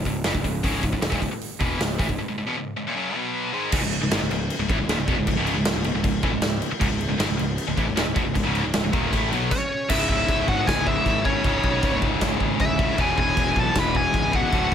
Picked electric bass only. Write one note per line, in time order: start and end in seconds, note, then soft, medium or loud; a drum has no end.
0.05 0.24 C#1 medium
0.25 0.34 F#1 medium
0.34 0.43 C#1 medium
0.44 0.62 C#1 medium
0.64 0.82 C#1 medium
0.83 0.92 C#1 medium
0.93 1.01 C#1 medium
1.01 1.11 C#1 medium
1.12 1.21 D#1 loud
1.21 1.30 C#1 medium
1.30 muted picked electric bass stroke soft
1.60 1.78 E1 medium
1.79 1.97 C#1 medium
1.99 2.08 A1 medium
2.09 2.18 C#1 medium
3.72 3.81 C#1 medium
3.82 4.00 C#1 medium
4.01 4.10 C#1 medium
4.11 4.20 G#1 medium
4.21 4.29 C#1 medium
4.30 4.48 C#1 medium
4.59 4.68 C#1 medium
4.69 4.78 A1 medium
4.79 4.86 C#1 medium
4.87 4.96 D#1 loud
4.97 5.06 C#1 medium
5.07 5.16 E1 loud
5.17 5.26 C#1 medium
5.27 5.36 C#1 medium
5.36 5.54 C#1 medium
5.55 5.64 C#1 medium
5.65 5.74 C#1 medium
5.75 5.84 C#1 loud
5.85 5.93 C#1 medium
5.94 6.03 C#1 medium
6.04 6.22 C#1 medium
6.23 6.32 A1 medium
6.33 6.42 C#1 medium
6.43 6.61 C#1 medium
6.72 muted picked electric bass stroke soft
6.81 6.90 C#1 medium
6.91 7.09 C#1 medium
7.09 7.18 C#1 medium
7.19 7.28 G#1 medium
7.29 7.38 C#1 medium
7.39 7.57 C#1 medium
7.68 7.77 C#1 medium
7.77 7.87 A1 medium
7.88 7.97 C#1 medium
7.97 8.06 D#1 medium
8.07 8.15 C#1 medium
8.16 8.25 E1 loud
8.26 8.35 C#1 medium
8.35 8.44 C#1 medium
8.46 8.64 C#1 medium
8.65 8.74 C#1 medium
8.75 8.83 C#1 medium
8.84 8.92 C#1 medium
8.93 9.11 D#1 loud
9.12 9.30 A1 medium
9.32 9.50 B1 medium
9.89 10.04 C#1 medium
10.09 10.24 C#1 medium
10.28 10.43 C#1 loud
10.48 10.62 G#1 medium
10.67 10.96 C#1 medium
11.06 11.35 G#1 medium
11.44 11.59 C#1 loud
11.63 11.78 B1 medium
11.83 11.97 C#1 loud
12.01 12.16 C#1 loud
12.21 12.36 C#1 loud
12.40 12.55 G#1 medium
12.60 12.89 D1 medium
12.98 13.13 E1 medium
13.17 13.32 E1 medium
13.37 13.51 E1 medium
13.56 13.70 B1 loud
13.75 14.05 E1 loud
14.14 14.43 C#1 loud
14.52 14.67 D1 medium